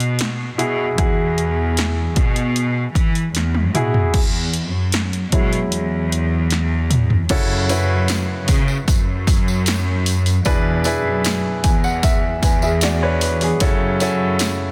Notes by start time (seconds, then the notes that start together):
Already playing: B2
0.00 closed hi-hat
0.19 snare, closed hi-hat
0.58 B2 E4 F#4 G#4, closed hi-hat
0.97 E2 E4 F#4 G#4, kick, closed hi-hat
1.38 closed hi-hat
1.77 snare, closed hi-hat
2.16 B2, kick, closed hi-hat
2.36 closed hi-hat
2.56 closed hi-hat
2.95 E3, kick, closed hi-hat
3.15 closed hi-hat
3.35 E2, snare, closed hi-hat
3.55 high tom
3.74 B2 E4 F#4 G#4, closed hi-hat, mid tom
3.94 floor tom
4.14 E2, kick, closed hi-hat, crash
4.54 closed hi-hat
4.73 F#2
4.92 snare, closed hi-hat
5.13 closed hi-hat
5.32 B2 F#3 G#3 E4, kick, closed hi-hat
5.53 closed hi-hat
5.71 E2, closed hi-hat
6.12 closed hi-hat
6.51 snare, closed hi-hat
6.90 closed hi-hat, mid tom
7.10 floor tom
7.29 F#2 C#3 C#4 E4 F#4 A4, kick, open hi-hat, crash, tambourine
7.69 C#4 E4 F#4 B4, open hi-hat, tambourine
8.08 snare, open hi-hat, tambourine
8.48 C#3, kick, open hi-hat, tambourine
8.68 tambourine
8.87 F#2, kick, open hi-hat, tambourine
9.27 kick, open hi-hat, tambourine
9.48 tambourine
9.66 snare, open hi-hat, tambourine
10.06 open hi-hat, tambourine
10.26 open hi-hat, tambourine
10.45 E2 B2 D4 E4 G#4 B4, kick, open hi-hat, tambourine
10.84 D4 E4 G#4 B4, open hi-hat, tambourine
11.04 F#2
11.24 snare, open hi-hat, tambourine
11.64 E2 G#5, kick, open hi-hat, tambourine
11.84 F#5, tambourine
12.03 E5, kick, open hi-hat, tambourine
12.43 E2 B4 G#5, kick, open hi-hat, tambourine
12.62 G#4 E5, tambourine
12.81 F#4 D5, snare, open hi-hat, tambourine
13.03 D4 B4 C#5
13.21 B4, open hi-hat, tambourine
13.41 B3 G#4, open hi-hat, tambourine
13.60 F#2 C#3 C#4 E4 F#4 A4, kick, open hi-hat, tambourine
14.00 C#4 E4 F#4 A4, open hi-hat, tambourine
14.39 snare, open hi-hat, tambourine